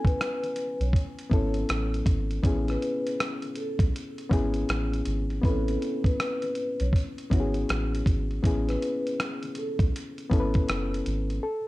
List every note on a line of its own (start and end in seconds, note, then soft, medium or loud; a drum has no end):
0.00 0.41 B3 medium
0.00 0.42 C#4 medium
0.00 0.43 E4 medium
0.00 0.43 G#5 medium
0.05 0.18 B4 medium
0.05 kick medium
0.05 closed hi-hat soft
0.21 0.77 B4 medium
0.21 cross-stick loud
0.21 closed hi-hat medium
0.44 closed hi-hat soft
0.56 closed hi-hat medium
0.80 0.92 B1 medium
0.80 0.93 C#5 medium
0.80 closed hi-hat soft
0.93 kick medium
0.93 closed hi-hat medium
1.19 closed hi-hat soft
1.29 1.64 G#1 medium
1.29 2.02 B3 medium
1.29 2.02 C#4 medium
1.29 2.03 E4 medium
1.29 1.53 C#5 medium
1.29 kick medium
1.29 closed hi-hat medium
1.33 2.04 A4 medium
1.54 closed hi-hat soft
1.69 2.02 A1 medium
1.69 cross-stick loud
1.69 closed hi-hat medium
1.94 closed hi-hat soft
2.06 2.39 G#1 medium
2.06 kick medium
2.06 closed hi-hat medium
2.31 closed hi-hat soft
2.43 2.77 A1 loud
2.43 3.41 B3 medium
2.43 3.42 C#4 medium
2.43 3.43 E4 medium
2.43 3.43 G#4 medium
2.43 kick loud
2.43 closed hi-hat medium
2.68 2.80 B4 medium
2.68 cross-stick soft
2.68 closed hi-hat soft
2.82 3.16 B4 medium
2.82 closed hi-hat medium
3.07 closed hi-hat medium
3.20 cross-stick loud
3.20 closed hi-hat medium
3.42 closed hi-hat soft
3.56 3.78 A4 medium
3.56 closed hi-hat medium
3.79 3.92 B1 medium
3.79 kick medium
3.79 closed hi-hat medium
3.96 closed hi-hat medium
4.18 closed hi-hat soft
4.30 4.64 G#1 medium
4.30 5.02 B3 medium
4.30 5.02 C#4 medium
4.30 5.03 E4 medium
4.30 5.04 G#4 loud
4.30 kick medium
4.30 closed hi-hat medium
4.54 closed hi-hat soft
4.69 5.02 A1 medium
4.69 cross-stick loud
4.69 closed hi-hat medium
4.94 closed hi-hat soft
5.06 5.39 G#1 medium
5.06 closed hi-hat medium
5.30 closed hi-hat soft
5.42 5.77 A1 loud
5.42 6.41 B3 medium
5.42 5.51 C4 medium
5.42 6.42 E4 medium
5.42 6.01 A4 medium
5.42 6.43 B4 medium
5.42 kick medium
5.42 closed hi-hat medium
5.50 6.45 C#4 medium
5.68 closed hi-hat soft
5.82 closed hi-hat medium
6.04 6.17 B4 medium
6.04 kick medium
6.04 closed hi-hat soft
6.20 6.76 B4 medium
6.20 cross-stick loud
6.20 closed hi-hat medium
6.42 closed hi-hat soft
6.55 closed hi-hat medium
6.80 6.92 B1 medium
6.80 6.93 C#5 medium
6.80 closed hi-hat medium
6.93 kick medium
6.93 closed hi-hat medium
7.18 closed hi-hat soft
7.30 7.65 G#1 medium
7.30 8.02 B3 medium
7.30 8.02 C#4 medium
7.30 8.03 E4 medium
7.30 7.40 F#4 medium
7.30 7.53 C#5 medium
7.30 kick medium
7.30 closed hi-hat medium
7.40 8.07 G#4 medium
7.54 closed hi-hat soft
7.69 8.02 A1 medium
7.69 cross-stick loud
7.69 closed hi-hat medium
7.94 closed hi-hat soft
8.06 8.39 G#1 medium
8.06 kick medium
8.06 closed hi-hat medium
8.31 closed hi-hat soft
8.42 8.77 A1 loud
8.42 9.41 B3 medium
8.42 9.42 C#4 medium
8.42 9.43 E4 medium
8.42 9.43 G#4 medium
8.42 kick loud
8.42 closed hi-hat medium
8.68 8.80 B4 medium
8.68 cross-stick soft
8.68 closed hi-hat soft
8.82 9.15 B4 medium
8.82 closed hi-hat medium
9.07 closed hi-hat medium
9.20 cross-stick loud
9.20 closed hi-hat medium
9.43 closed hi-hat soft
9.55 9.78 A4 medium
9.55 closed hi-hat medium
9.79 9.92 B1 medium
9.79 kick medium
9.79 closed hi-hat medium
9.96 closed hi-hat medium
10.18 closed hi-hat soft
10.30 10.65 G#1 medium
10.30 11.02 B3 medium
10.30 11.02 C#4 medium
10.30 11.03 E4 medium
10.30 10.40 A4 medium
10.30 kick medium
10.30 closed hi-hat medium
10.40 11.07 B4 loud
10.54 kick medium
10.54 closed hi-hat soft
10.69 11.02 F#1 medium
10.69 cross-stick loud
10.69 closed hi-hat medium
10.95 closed hi-hat soft
11.06 11.39 G#1 medium
11.06 closed hi-hat medium
11.30 closed hi-hat soft
11.43 11.68 A4 medium